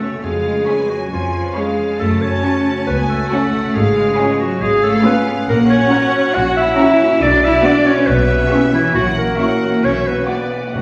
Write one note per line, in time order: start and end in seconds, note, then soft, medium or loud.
0.00 0.25 F#2 soft
0.00 0.25 C#3 soft
0.00 0.25 F#3 soft
0.00 0.11 A3 soft
0.00 0.13 A3 soft
0.00 0.23 A3 medium
0.00 0.55 C#4 soft
0.00 0.13 F#4 soft
0.00 0.25 F#4 soft
0.00 0.23 A4 medium
0.00 0.25 A4 soft
0.00 0.24 C#5 soft
0.00 0.88 C#5 soft
0.00 0.12 F#5 soft
0.00 0.25 F#5 soft
0.00 0.12 C#6 soft
0.12 0.25 A3 soft
0.23 0.58 F2 medium
0.23 2.01 F2 soft
0.23 0.88 G#3 medium
0.23 0.91 G#4 medium
0.23 0.68 F5 soft
0.34 1.77 F3 soft
0.45 1.88 B3 soft
0.56 1.66 C#4 soft
0.67 1.01 C#4 soft
0.67 1.54 G#4 soft
0.67 1.01 G#4 soft
0.67 1.10 G#5 medium
0.67 1.00 B5 soft
0.67 1.00 C#6 soft
0.79 1.43 B4 soft
0.89 1.12 F#3 medium
0.89 1.11 F#4 medium
0.89 1.10 C#5 soft
1.00 1.21 G#5 soft
1.11 1.46 F2 medium
1.11 1.56 F3 medium
1.11 1.58 F4 medium
1.11 1.32 C#5 soft
1.11 1.55 G#5 medium
1.22 2.01 G#5 soft
1.33 2.64 C#5 soft
1.44 2.01 B4 soft
1.55 2.00 G#3 medium
1.55 1.89 C#4 soft
1.55 2.01 G#4 soft
1.55 1.89 G#4 soft
1.55 1.99 G#4 medium
1.55 1.99 F5 medium
1.55 1.89 B5 medium
1.55 1.89 C#6 soft
1.67 2.31 C#4 soft
1.78 2.02 F3 soft
1.89 2.02 B3 soft
1.99 2.34 F#2 medium
1.99 3.77 F#2 medium
1.99 2.22 A3 medium
1.99 2.23 A4 medium
1.99 2.88 A5 medium
2.10 3.51 C#3 soft
2.21 3.63 A3 soft
2.21 2.86 C#4 medium
2.21 2.86 C#5 medium
2.33 3.40 C#4 soft
2.43 2.76 C#4 medium
2.43 3.30 F#4 soft
2.43 2.76 F#4 medium
2.43 2.76 A5 medium
2.43 2.76 C#6 medium
2.54 3.19 A4 soft
2.65 2.86 C#5 soft
2.77 2.96 F#5 soft
2.87 3.22 C#2 medium
2.87 3.09 B3 medium
2.87 2.97 B4 medium
2.87 3.08 C#5 soft
2.87 3.32 G#5 medium
2.98 3.76 F#5 soft
3.09 3.74 A3 medium
3.09 3.76 A4 medium
3.09 4.38 C#5 soft
3.20 3.77 A4 soft
3.31 3.64 C#4 medium
3.31 3.77 F#4 soft
3.31 3.64 F#4 medium
3.31 3.75 F#5 medium
3.31 3.64 A5 medium
3.31 3.64 C#6 medium
3.42 4.06 C#4 soft
3.52 3.76 C#3 soft
3.64 3.77 A3 soft
3.75 4.10 G#1 medium
3.75 5.51 G#2 medium
3.75 4.40 G#3 medium
3.75 4.39 G#4 medium
3.75 4.18 F5 medium
3.86 5.26 G#3 soft
3.97 5.37 B3 soft
4.08 5.15 C#4 soft
4.18 4.51 C#4 medium
4.18 5.04 F4 medium
4.18 4.51 F4 medium
4.18 4.62 C#5 medium
4.18 4.51 G#5 medium
4.18 4.51 B5 medium
4.29 4.93 B4 medium
4.40 4.62 F#3 medium
4.40 4.63 F#4 medium
4.40 4.60 C#5 medium
4.51 4.71 F5 medium
4.61 4.96 G#1 medium
4.61 4.69 G#3 medium
4.61 4.85 G#4 medium
4.61 4.82 C#5 medium
4.61 5.47 F5 medium
4.73 5.51 F5 medium
4.83 5.05 A3 medium
4.83 5.05 A4 medium
4.83 6.12 C#5 medium
4.95 5.51 B4 medium
5.05 5.27 B3 medium
5.05 5.38 C#4 medium
5.05 5.38 F4 medium
5.05 5.51 F4 medium
5.05 5.27 B4 medium
5.05 5.38 G#5 medium
5.05 5.38 B5 medium
5.16 5.80 C#4 soft
5.27 5.51 G#3 medium
5.38 5.51 B3 medium
5.49 5.83 A#1 medium
5.49 7.23 A#2 medium
5.49 5.69 A#3 medium
5.49 5.59 A#4 loud
5.49 6.76 F#5 medium
5.59 7.00 A#3 medium
5.70 6.89 F#3 medium
5.70 6.35 C#4 medium
5.70 6.36 C#5 loud
5.81 6.01 C#4 medium
5.92 6.24 C#4 medium
5.92 6.67 F#4 medium
5.92 6.24 F#4 medium
5.92 6.24 F#5 medium
5.92 6.24 A#5 medium
6.02 6.78 C#4 medium
6.13 6.34 C#5 medium
6.24 6.45 F#5 medium
6.35 6.70 A#1 medium
6.35 6.57 F#4 medium
6.35 6.56 C#5 medium
6.35 6.56 F#5 loud
6.46 7.85 F#5 medium
6.57 7.21 E4 medium
6.57 7.24 C#5 medium
6.57 7.24 E5 loud
6.68 7.53 F#4 medium
6.78 7.11 C#4 medium
6.78 7.24 C#4 medium
6.78 7.11 F#4 medium
6.78 7.21 C#5 medium
6.78 7.11 F#5 medium
6.78 7.11 A#5 medium
6.90 7.10 F#3 medium
7.01 7.24 A#3 medium
7.11 7.31 F#3 medium
7.21 7.56 B1 medium
7.21 7.82 B2 medium
7.21 8.06 B2 medium
7.21 7.43 D4 medium
7.21 8.08 D5 medium
7.21 7.45 D5 loud
7.32 8.10 F#3 medium
7.43 7.63 B3 medium
7.43 7.65 E4 medium
7.43 7.67 E5 medium
7.54 8.10 F#4 medium
7.64 7.97 B3 medium
7.64 8.18 B3 medium
7.64 7.86 D4 medium
7.64 7.97 F#4 medium
7.64 7.88 D5 loud
7.64 7.97 F#5 medium
7.64 7.97 D6 medium
7.75 7.96 B4 medium
7.86 8.08 C#4 medium
7.86 8.08 C#5 loud
7.86 8.10 F#5 medium
7.97 8.98 B4 medium
8.07 8.43 B1 medium
8.07 8.97 B2 medium
8.07 8.74 B3 medium
8.07 8.74 B4 loud
8.07 8.94 E5 medium
8.19 8.98 B3 medium
8.30 8.98 G3 medium
8.41 9.28 C#4 medium
8.52 8.85 C#4 medium
8.52 9.39 E4 medium
8.52 8.85 G4 medium
8.52 8.85 E5 medium
8.52 8.85 C#6 medium
8.63 8.98 G4 medium
8.74 8.96 E3 medium
8.74 8.95 E4 medium
8.74 9.61 C#5 medium
8.85 9.72 E5 medium
8.95 9.30 A#1 medium
8.95 9.86 A#2 medium
8.95 9.17 F#3 medium
8.95 9.05 F#4 medium
8.95 9.39 F#5 medium
9.07 9.86 E3 medium
9.17 9.94 F#3 soft
9.17 9.82 A#3 medium
9.17 9.86 A#4 medium
9.29 9.86 C#4 soft
9.39 9.73 C#4 medium
9.39 9.86 E4 medium
9.39 9.72 F#4 medium
9.39 9.73 E5 medium
9.39 9.83 F#5 medium
9.39 9.73 C#6 medium
9.51 10.28 F#4 soft
9.62 9.86 C#5 medium
9.73 9.86 E5 medium
9.83 10.19 B1 medium
9.83 10.77 B2 medium
9.83 10.06 C#4 medium
9.83 10.09 C#5 medium
9.83 10.28 E5 medium
9.95 10.82 F#3 soft
10.06 10.82 B3 soft
10.06 10.73 B3 medium
10.06 10.74 B4 medium
10.17 10.82 D4 soft
10.28 10.63 B3 medium
10.28 10.63 F#4 medium
10.28 10.82 F#4 soft
10.28 10.74 D5 medium
10.28 10.63 F#5 medium
10.28 10.63 D6 medium
10.40 10.82 B4 soft
10.51 10.82 D5 soft
10.63 10.82 F#5 soft
10.74 10.82 F#1 medium
10.74 10.82 F#2 soft
10.74 10.82 F#2 medium
10.74 10.82 F#3 medium
10.74 10.82 F#4 medium
10.74 10.82 F#5 medium